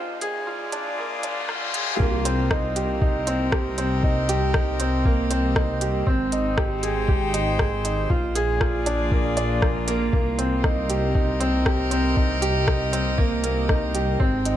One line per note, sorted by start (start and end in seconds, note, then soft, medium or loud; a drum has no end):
0.00 1.97 A#1 medium
0.00 3.62 A#3 medium
0.00 0.20 F4 medium
0.00 0.78 C5 medium
0.00 riser medium
0.21 3.44 F4 medium
0.21 0.46 G#4 loud
0.21 closed hi-hat medium
0.38 2.00 G#4 medium
0.38 2.00 D5 medium
0.47 0.62 F4 medium
0.72 0.97 D4 medium
0.72 closed hi-hat medium
0.98 1.13 A#3 medium
0.98 reverse cymbal medium
1.23 1.48 D4 medium
1.23 closed hi-hat medium
1.49 1.73 F4 medium
1.49 cross-stick medium
1.74 1.99 G#4 medium
1.74 closed hi-hat medium
2.00 6.04 C2 medium
2.00 6.07 C3 medium
2.00 2.24 A#3 medium
2.00 kick loud
2.17 6.88 A#4 medium
2.25 2.40 C4 medium
2.25 closed hi-hat medium
2.41 6.88 C4 medium
2.51 2.65 D#4 medium
2.51 kick loud
2.51 cross-stick loud
2.76 3.00 G4 medium
2.76 closed hi-hat medium
2.92 6.88 D#5 medium
3.02 3.16 D#4 medium
3.02 kick loud
3.27 3.51 C4 medium
3.27 closed hi-hat medium
3.52 3.67 G4 medium
3.52 kick loud
3.52 cross-stick loud
3.78 4.02 C4 medium
3.78 closed hi-hat medium
4.03 4.28 D#4 medium
4.03 kick loud
4.29 4.53 G4 loud
4.29 closed hi-hat medium
4.54 4.69 D#4 medium
4.54 kick loud
4.54 cross-stick loud
4.80 5.04 C4 medium
4.80 closed hi-hat medium
5.05 5.20 A#3 medium
5.05 kick loud
5.31 5.55 C4 medium
5.31 closed hi-hat medium
5.56 5.80 D#4 medium
5.56 kick loud
5.56 cross-stick loud
5.81 6.05 G4 medium
5.81 closed hi-hat medium
6.07 8.08 G#1 medium
6.07 8.10 G#3 medium
6.07 6.31 C4 medium
6.07 kick loud
6.32 6.47 D#4 medium
6.32 8.10 D#4 medium
6.32 closed hi-hat medium
6.58 6.72 G4 medium
6.58 kick loud
6.58 cross-stick loud
6.69 8.91 C5 medium
6.80 7.07 G#4 medium
6.80 8.10 G5 medium
6.80 closed hi-hat medium
7.08 7.23 G4 medium
7.08 kick loud
7.34 7.58 D#4 medium
7.34 closed hi-hat medium
7.59 7.74 G#4 medium
7.59 kick loud
7.59 cross-stick loud
7.85 8.09 D#4 medium
7.85 closed hi-hat medium
8.10 11.76 A#3 medium
8.10 8.34 F4 medium
8.10 kick loud
8.32 11.54 F4 medium
8.32 8.60 G#4 loud
8.32 closed hi-hat medium
8.37 10.13 G#4 medium
8.54 10.13 D5 medium
8.61 8.75 F4 medium
8.61 kick loud
8.61 cross-stick loud
8.86 9.10 D4 medium
8.86 closed hi-hat medium
9.12 9.26 A#3 medium
9.12 kick loud
9.37 9.61 D5 medium
9.37 closed hi-hat medium
9.62 9.86 A#3 medium
9.62 kick loud
9.62 cross-stick medium
9.88 10.11 A#3 loud
9.88 closed hi-hat medium
10.13 14.17 C2 medium
10.13 14.20 C3 medium
10.13 10.37 A#3 medium
10.13 kick loud
10.38 10.53 C4 medium
10.38 14.57 C4 medium
10.38 closed hi-hat medium
10.57 14.57 D#5 loud
10.64 10.79 D#4 medium
10.64 14.57 A#4 medium
10.64 kick loud
10.64 cross-stick medium
10.90 11.14 G4 medium
10.90 closed hi-hat medium
11.15 11.29 D#4 medium
11.15 kick loud
11.40 11.65 C4 medium
11.40 closed hi-hat medium
11.65 11.80 G4 medium
11.65 kick loud
11.65 cross-stick loud
11.91 12.15 C4 medium
11.91 closed hi-hat medium
12.16 12.41 D#4 medium
12.16 kick loud
12.42 12.66 G4 loud
12.42 closed hi-hat medium
12.67 12.82 D#4 medium
12.67 kick loud
12.67 cross-stick loud
12.93 13.17 C4 medium
12.93 closed hi-hat medium
13.18 13.33 A#3 medium
13.18 kick loud
13.44 13.68 A#3 medium
13.44 closed hi-hat medium
13.69 13.93 D#4 medium
13.69 kick loud
13.69 cross-stick medium
13.94 14.19 G4 medium
13.94 closed hi-hat medium
14.20 14.57 G#1 medium
14.20 14.57 G#3 medium
14.20 14.44 C4 medium
14.20 kick loud
14.41 14.57 G5 medium
14.45 14.57 D#4 medium
14.45 closed hi-hat medium
14.50 14.57 C5 medium